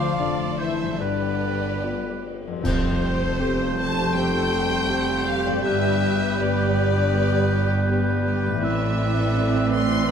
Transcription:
Already playing: grand piano D2, double bass section D2, cello section D2, harp D3 A3 D4 D5, french horn section F3, violin section A3 F4 F5, clarinet F4, viola section C5, oboe D5, flute F5
0.19 double bass section F1, cello section F2, grand piano A3 D4 D5, violin section A4, viola section D5
0.58 french horn section E3, clarinet E4, viola section C5, oboe C5, flute E5, violin section E5
0.82 harp G2
0.86 harp B3
0.91 harp F4
0.96 double bass section G1, grand piano G2, cello section G2, harp D5, flute D5
1.00 french horn section D3, violin section B3 G4 D5, clarinet D4, viola section B4, oboe B4
1.83 grand piano B3 F4 D5
2.47 harp F2
2.52 harp C4
2.57 harp G4
2.61 double bass section F1, grand piano F2, viola section G3 G4, harp A4, oboe C5, flute G6
2.65 cello section F2, french horn section G3 A4, clarinet A3, violin section C4 C5, concert bass drum, crash
2.85 violin section F4
3.04 violin section G4
3.23 violin section A4
3.39 grand piano C4 G4 A4, violin section G4
3.60 violin section F4
3.79 violin section C4 A5
3.97 violin section F4
4.14 grand piano C4 G4 A4, violin section G4 G5
4.38 violin section A4
4.54 violin section G4
4.74 violin section F4
4.89 grand piano C4 G4 A4, violin section C4
5.11 violin section F4
5.27 violin section G4 F5
5.47 harp G2, violin section A4 D5
5.52 harp D4
5.57 harp G4
5.61 double bass section G1, grand piano G2, clarinet B3, harp D5, french horn section D5, violin section E5
5.65 cello section G2, violin section B3 B4, oboe B4
5.87 violin section D4
6.05 violin section G4
6.23 violin section B4
6.40 grand piano B3 G4 B4, violin section D5
6.44 violin section G4
6.62 violin section D4
6.79 violin section B3
6.97 violin section D4
7.14 grand piano B3 G4 B4, violin section G4
7.36 violin section B4
7.54 violin section G4
7.72 violin section D4
7.89 grand piano B3 G4 B4, violin section B3
8.08 violin section D4
8.26 violin section G4
8.44 harp A2, violin section B4
8.50 harp C4
8.55 harp E3
8.59 double bass section A1, grand piano A2, cello section A2, french horn section E3, viola section E3 C4, violin section B3 E5, clarinet C4, harp A4
8.64 flute E6
8.81 violin section C4
8.99 violin section E4
9.18 violin section A4
9.37 grand piano C4 E4 A4, violin section E4
9.55 violin section C4
9.73 violin section B3 C6
9.92 violin section C4

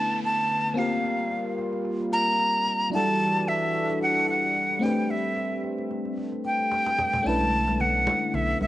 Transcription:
Already playing: analog synth pad D3 A3 B3, fm electric piano A3 C#4 D4 E4 B4, flute A5, downlifter
0.11 cajon slap
0.23 flute A5, cajon slap
0.38 cajon slap
0.50 cajon slap
0.64 cajon slap
0.74 analog synth pad G3 A#3 F4, fm electric piano A#3 C4 F4, cajon slap
0.78 fm electric piano G4 A#4, flute F5
0.92 cajon slap
1.04 cajon slap
1.19 cajon slap
1.31 cajon slap
1.58 cajon slap
1.73 cajon slap
1.85 cajon slap
2.00 cajon slap
2.12 flute A#5, cajon slap
2.27 cajon slap
2.39 cajon slap
2.54 cajon slap
2.66 cajon slap
2.81 cajon slap
2.90 analog synth pad E3 G3 D4 F#4 A4, fm electric piano F#3 D4 E4, cajon slap
2.94 fm electric piano G3 F#4 A4, flute A5
3.08 cajon slap
3.21 cajon slap
3.35 cajon slap
3.47 flute E5, cajon slap
3.75 cajon slap
3.89 cajon slap
4.01 flute F#5, cajon slap
4.16 cajon slap
4.28 flute F#5, cajon slap
4.43 cajon slap
4.56 cajon slap
4.70 cajon slap
4.79 fm electric piano A3 C4 D4, analog synth pad A3 C4, cajon slap
4.83 fm electric piano G4 B4, flute G5
4.97 cajon slap
5.10 flute E5, cajon slap
5.24 cajon slap
5.37 cajon slap
5.51 cajon slap
5.64 cajon slap
5.78 cajon slap
5.91 cajon slap
6.05 cajon slap
6.18 cajon slap
6.32 cajon slap
6.44 flute G5, cajon slap
6.59 cajon slap
6.72 cajon slap
6.86 cajon slap
6.99 cajon bass, cajon slap
7.13 cajon bass
7.22 sub bass B1, analog synth pad D3 B3, fm electric piano A3 C#4 D4, cajon slap
7.27 fm electric piano E4 B4, flute A5
7.41 high conga
7.53 cajon slap
7.67 cajon slap, high conga
7.80 flute F#5, cajon slap, low conga
8.07 cajon slap, high conga
8.22 cajon slap
8.34 sub bass B1, flute E5, cajon slap, low conga
8.48 cajon slap
8.61 sub bass B1, flute E5, cajon slap, high conga

